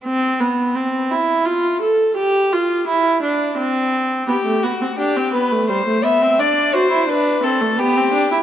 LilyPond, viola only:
\new Staff \with { instrumentName = "Viola" } { \time 3/4 \key g \mixolydian \tempo 4 = 85 c'8 b8 c'8 e'8 f'8 a'8 | g'8 f'8 e'8 d'8 c'4 | b16 a16 b16 c'16 d'16 c'16 b16 a16 g16 a16 b16 c'16 | d'8 fis'16 e'16 d'8 c'16 a16 b16 c'16 d'16 e'16 | }